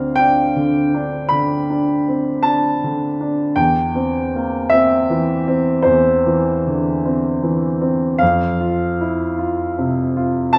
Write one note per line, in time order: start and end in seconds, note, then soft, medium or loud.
0.00 1.24 D2 soft
0.00 0.19 C4 soft
0.00 0.19 D4 soft
0.00 0.17 F5 medium
0.16 0.79 D4 soft
0.16 1.30 G5 medium
0.56 1.16 D3 soft
0.94 1.54 D4 soft
1.29 1.91 D3 soft
1.29 2.43 B5 medium
1.70 2.30 D4 soft
2.08 2.45 C4 soft
2.43 3.05 D4 soft
2.43 3.57 A5 medium
2.84 3.43 D3 soft
3.21 3.58 D4 soft
3.56 5.83 E2 soft
3.56 4.71 G5 medium
3.95 4.56 C4 soft
4.36 4.73 A#3 soft
4.70 5.33 C4 soft
4.70 5.87 E5 medium
5.10 5.72 E3 soft
5.48 6.12 C4 soft
5.83 8.16 E2 soft
5.83 7.41 C5 medium
6.26 6.89 E3 soft
6.67 7.05 D3 soft
7.06 7.67 C4 soft
7.43 8.06 E3 soft
7.82 8.21 C4 soft
8.18 10.51 F2 soft
8.18 10.54 F5 medium
8.60 9.22 F4 soft
9.01 9.39 E4 soft
9.38 10.00 F4 soft
9.78 10.41 C3 soft
10.16 10.58 F4 soft
10.53 10.58 A5 medium